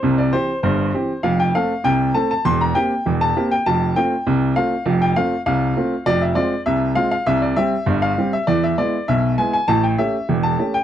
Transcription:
X:1
M:2/4
L:1/16
Q:1/4=100
K:Flyd
V:1 name="Upright piano"
c d c2 c4 | f g f2 g2 a a | c' _b g3 a2 g | a2 g4 f2- |
f g f2 f4 | d e d2 e2 f f | e d e3 f2 e | d e d2 e2 ^g g |
a g e3 a2 g |]
V:2 name="Upright piano"
[C,,C,]2 [E,CG]2 [G,,,G,,]2 [E,CG]2 | [F,,,F,,]2 [A,CA]2 [C,,C,]2 [A,CA]2 | [E,,,E,,]2 [_B,CG]2 [E,,,E,,]2 [B,CG]2 | [F,,,F,,]2 [A,CF]2 [C,,C,]2 [A,CF]2 |
[F,,,F,,]2 [A,CF]2 [C,,C,]2 [A,CF]2 | [F,,,F,,]2 [_A,CF]2 [C,,C,]2 [A,CF]2 | [C,,C,]2 [G,CG]2 [G,,,G,,]2 [G,CG]2 | [E,,E,]2 [^G,B,E]2 [B,,,B,,]2 [G,B,E]2 |
[A,,,A,,]2 [A,^CG]2 [E,,,E,,]2 [A,CG]2 |]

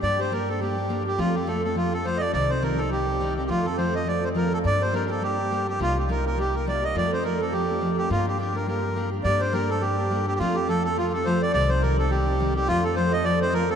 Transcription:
X:1
M:4/4
L:1/16
Q:"Swing" 1/4=208
K:Gm
V:1 name="Accordion"
d2 c2 B2 A2 G6 G2 | F2 G2 A2 A2 F2 A2 c3/2 e/2 d2 | d2 c2 B2 A2 G6 G3/2 G/2 | F2 A2 c2 e2 d2 c2 B2 A2 |
d2 c2 B3/2 B/2 A2 G6 G2 | F2 G2 B2 B2 G2 B2 d2 e2 | d2 c2 B2 A2 G6 G2 | F2 G2 G2 B2 B6 z2 |
d2 c2 B2 A2 G6 G3/2 G/2 | F2 G2 A2 A2 F2 A2 c2 d2 | d2 c2 B2 A2 G6 G2 | F2 A2 c2 e2 d2 c2 B2 A2 |]
V:2 name="Steel-string acoustic guitar"
[G,B,DG]2 [B,DG]2 [G,B,DG]2 [B,DG]2 [G,B,DG]2 [B,DG]2 [G,B,DG]2 [B,DG]2 | [F,A,CF]2 [A,CF]2 [F,A,CF]2 [A,CF]2 [F,A,CF]2 [A,CF]2 [F,A,CF]2 [A,CF]2 | [C,E,G,CE]2 [G,CE]2 [C,E,G,CE]2 [G,CE]2 [E,G,CE]2 [G,CE]2 [C,E,G,CE]2 [G,CE]2 | [F,A,CF]2 [A,CF]2 [F,A,CF]2 [A,CF]2 [F,A,CF]2 [A,CF]2 [F,A,CF]2 [A,CF]2 |
[G,B,DG]2 [B,DG]2 [G,B,DG]2 [B,DG]2 [G,B,DG]2 [B,DG]2 [G,B,DG]2 [B,DG]2 | [C,G,B,EG]2 [B,EG]2 [C,G,B,EG]2 [B,EG]2 [G,B,EG]2 [B,EG]2 [C,G,B,EG]2 [B,EG]2 | [F,A,CF]2 [A,CF]2 [F,A,CF]2 [A,CF]2 [F,A,CF]2 [A,CF]2 [F,A,CF]2 [A,CF]2 | [G,B,DG]2 [B,DG]2 [G,B,DG]2 [B,DG]2 [G,B,DG]2 [B,DG]2 [G,B,DG]2 [B,DG]2 |
[G,B,DG]2 [B,DG]2 [G,B,DG]2 [B,DG]2 [G,B,DG]2 [B,DG]2 [G,B,DG]2 [B,DG]2 | [F,A,CF]2 [A,CF]2 [F,A,CF]2 [A,CF]2 [F,A,CF]2 [A,CF]2 [F,A,CF]2 [A,CF]2 | [C,E,G,CE]2 [G,CE]2 [C,E,G,CE]2 [G,CE]2 [E,G,CE]2 [G,CE]2 [C,E,G,CE]2 [G,CE]2 | [F,A,CF]2 [A,CF]2 [F,A,CF]2 [A,CF]2 [F,A,CF]2 [A,CF]2 [F,A,CF]2 [A,CF]2 |]
V:3 name="Upright bass" clef=bass
G,,16 | F,,16 | C,,16 | F,,16 |
G,,16 | C,,16 | F,,16 | G,,16 |
G,,16 | F,,16 | C,,16 | F,,16 |]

